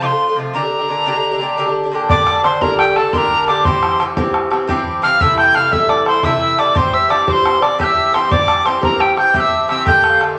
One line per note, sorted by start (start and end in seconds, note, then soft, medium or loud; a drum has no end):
0.01 0.10 C3 medium
0.01 0.11 F3 medium
0.01 0.10 A3 medium
0.01 0.08 F4 medium
0.01 0.07 D6 medium
0.06 0.26 F4 soft
0.06 0.37 C6 medium
0.11 0.29 F3 soft
0.11 0.28 A3 soft
0.27 0.36 F3 soft
0.27 0.37 A3 soft
0.27 0.36 F4 soft
0.36 0.53 C3 medium
0.36 0.54 F3 soft
0.36 0.55 A3 medium
0.36 0.55 F4 medium
0.54 0.62 A#2 medium
0.54 0.63 D3 medium
0.54 0.63 D4 medium
0.54 0.61 G4 medium
0.54 1.71 A#5 loud
0.62 0.81 D3 soft
0.62 0.80 D4 soft
0.62 0.77 G4 soft
0.79 0.88 D3 soft
0.79 0.89 D4 soft
0.79 0.88 G4 soft
0.88 1.04 A#2 medium
0.88 1.05 D3 medium
0.88 1.06 D4 medium
0.88 1.07 G4 medium
1.06 1.14 A#2 medium
1.06 1.15 D3 medium
1.06 1.15 D4 medium
1.06 1.13 G4 medium
1.14 1.33 D3 soft
1.14 1.32 D4 soft
1.14 1.30 G4 medium
1.31 1.40 D3 soft
1.31 1.41 D4 medium
1.31 1.40 G4 medium
1.39 1.56 A#2 medium
1.39 1.57 D3 medium
1.39 1.58 D4 medium
1.39 1.58 G4 medium
1.57 1.66 A#2 medium
1.57 1.66 D3 medium
1.57 1.66 D4 medium
1.57 1.64 G4 medium
1.65 1.85 D3 soft
1.65 1.84 D4 medium
1.65 1.82 G4 medium
1.83 1.92 D3 soft
1.83 1.93 D4 soft
1.83 1.92 G4 soft
1.91 2.08 A#2 medium
1.91 2.09 D3 medium
1.91 2.10 D4 medium
1.91 2.11 G4 medium
2.09 2.42 A#2 medium
2.09 2.43 D3 medium
2.09 2.44 D4 medium
2.09 2.46 G4 medium
2.09 2.45 D5 loud
2.09 2.42 D6 loud
2.09 bodhran loud
2.27 bodhran medium
2.43 2.61 A#2 medium
2.43 2.62 D3 medium
2.43 2.61 D4 medium
2.43 2.60 G4 medium
2.43 2.60 C5 medium
2.43 2.63 C6 loud
2.43 bodhran medium
2.61 2.97 A#2 medium
2.61 2.97 D3 medium
2.61 2.96 D4 medium
2.61 2.96 G4 medium
2.61 2.79 A#4 medium
2.61 2.78 A#5 loud
2.61 bodhran medium
2.78 2.96 G4 medium
2.78 2.98 G5 medium
2.78 bodhran medium
2.96 3.13 D3 soft
2.96 3.14 D4 medium
2.96 3.13 G4 medium
2.96 3.14 A4 medium
2.96 3.15 A5 medium
2.96 bodhran medium
3.13 3.45 A#2 medium
3.13 3.47 D3 medium
3.13 3.48 D4 medium
3.13 3.49 G4 medium
3.13 3.49 A#4 medium
3.13 3.19 C6 loud
3.13 bodhran medium
3.18 3.47 A#5 loud
3.31 bodhran soft
3.47 3.64 A#2 medium
3.47 3.65 D3 medium
3.47 3.66 D4 medium
3.47 3.66 G4 medium
3.47 3.65 D5 medium
3.47 3.66 D6 medium
3.47 bodhran medium
3.64 3.97 G2 medium
3.64 4.00 E3 medium
3.64 4.01 C4 medium
3.64 4.01 G4 medium
3.64 4.01 C5 medium
3.64 4.04 C6 medium
3.64 bodhran medium
3.83 bodhran medium
3.98 4.16 G2 medium
3.98 4.17 E3 medium
3.98 4.16 C4 medium
3.98 4.16 G4 medium
3.98 bodhran medium
4.17 4.52 G2 medium
4.17 4.53 E3 medium
4.17 4.52 C4 medium
4.17 4.49 G4 medium
4.17 bodhran medium
4.34 bodhran medium
4.50 4.67 E3 medium
4.50 4.68 C4 medium
4.50 4.68 G4 medium
4.50 bodhran medium
4.67 5.01 G2 medium
4.67 5.03 E3 medium
4.67 5.04 C4 medium
4.67 5.04 G4 medium
4.67 bodhran medium
4.86 bodhran soft
5.02 5.20 G2 medium
5.02 5.20 E3 medium
5.02 5.21 C4 medium
5.02 5.22 G4 medium
5.02 5.19 F5 medium
5.02 5.23 F6 loud
5.02 bodhran medium
5.20 5.53 C3 medium
5.20 5.55 E3 medium
5.20 5.55 A3 medium
5.20 5.57 E4 medium
5.20 5.38 E5 loud
5.20 5.38 E6 loud
5.20 bodhran medium
5.38 5.56 G5 loud
5.38 5.57 G6 loud
5.38 bodhran medium
5.54 5.72 C3 medium
5.54 5.72 E3 medium
5.54 5.71 A3 medium
5.54 5.70 E4 medium
5.54 5.71 F5 medium
5.54 5.75 F6 loud
5.54 bodhran medium
5.71 6.08 C3 medium
5.71 6.09 E3 medium
5.71 6.06 A3 medium
5.71 6.05 E4 medium
5.71 5.88 E5 medium
5.71 5.91 E6 loud
5.71 bodhran medium
5.89 6.07 D5 medium
5.89 6.07 D6 loud
5.89 bodhran medium
6.06 6.23 E3 soft
6.06 6.24 A3 soft
6.06 6.23 E4 medium
6.06 6.24 C5 medium
6.06 6.26 C6 loud
6.06 bodhran medium
6.23 6.56 C3 medium
6.23 6.58 E3 medium
6.23 6.58 A3 medium
6.23 6.60 E4 medium
6.23 6.60 E5 medium
6.23 6.61 E6 loud
6.23 bodhran medium
6.41 bodhran soft
6.57 6.73 C3 medium
6.57 6.74 E3 medium
6.57 6.75 A3 medium
6.57 6.76 E4 medium
6.57 6.77 D5 medium
6.57 6.78 D6 loud
6.57 bodhran medium
6.74 7.08 G2 medium
6.74 7.09 E3 medium
6.74 7.10 C4 medium
6.74 7.12 G4 medium
6.74 6.93 C5 medium
6.74 6.95 C6 loud
6.74 bodhran loud
6.93 7.09 E5 medium
6.93 7.12 E6 loud
7.09 7.27 G2 medium
7.09 7.28 E3 medium
7.09 7.27 C4 medium
7.09 7.26 G4 medium
7.09 7.28 D5 medium
7.09 7.29 D6 loud
7.09 bodhran medium
7.27 7.63 G2 medium
7.27 7.63 E3 medium
7.27 7.62 C4 medium
7.27 7.61 G4 medium
7.27 7.60 C5 medium
7.27 7.34 D6 medium
7.27 bodhran loud
7.33 7.64 C6 loud
7.46 bodhran medium
7.61 7.78 E3 soft
7.61 7.79 C4 soft
7.61 7.79 G4 soft
7.61 7.78 D5 medium
7.61 7.80 D6 medium
7.61 bodhran medium
7.79 8.11 G2 medium
7.79 8.12 E3 medium
7.79 8.13 C4 medium
7.79 8.15 G4 medium
7.79 8.15 E5 medium
7.79 7.85 G6 loud
7.79 bodhran medium
7.84 8.16 E6 loud
7.97 bodhran soft
8.12 8.29 G2 medium
8.12 8.30 E3 medium
8.12 8.31 C4 medium
8.12 8.31 G4 medium
8.12 8.32 C5 medium
8.12 8.33 C6 medium
8.12 bodhran medium
8.30 8.63 G2 medium
8.30 8.65 E3 medium
8.30 8.66 C4 medium
8.30 8.68 G4 medium
8.30 8.64 D5 medium
8.30 8.68 D6 loud
8.30 bodhran loud
8.48 bodhran medium
8.65 8.83 G2 medium
8.65 8.82 E3 medium
8.65 8.81 C4 medium
8.65 8.80 G4 medium
8.65 8.82 C5 medium
8.65 8.83 C6 loud
8.65 bodhran medium
8.81 9.18 G2 medium
8.81 9.18 E3 medium
8.81 9.17 C4 medium
8.81 9.16 G4 medium
8.81 8.99 A#4 medium
8.81 9.02 A#5 loud
8.81 bodhran medium
8.99 9.16 G4 medium
8.99 9.18 G5 medium
8.99 bodhran medium
9.16 9.34 E3 soft
9.16 9.35 C4 medium
9.16 9.34 G4 medium
9.16 9.35 G5 medium
9.16 9.36 G6 loud
9.16 bodhran medium
9.34 9.67 G2 medium
9.34 9.68 E3 medium
9.34 9.69 C4 medium
9.34 9.71 G4 medium
9.34 9.67 E5 medium
9.34 9.41 G6 loud
9.34 bodhran medium
9.40 9.69 E6 loud
9.52 bodhran soft
9.68 9.85 G2 medium
9.68 9.86 E3 medium
9.68 9.87 C4 medium
9.68 9.87 G4 medium
9.68 9.87 E5 medium
9.68 9.86 E6 medium
9.68 bodhran medium
9.86 10.19 A#2 medium
9.86 10.20 D3 medium
9.86 10.21 A3 medium
9.86 10.23 G4 medium
9.86 10.02 G5 medium
9.86 10.23 G6 loud
9.86 bodhran medium
10.04 10.24 F5 medium
10.04 10.08 G5 medium
10.04 bodhran medium
10.20 10.38 A#2 medium
10.20 10.38 D3 medium
10.20 10.37 A3 medium
10.20 10.36 G4 medium
10.20 bodhran medium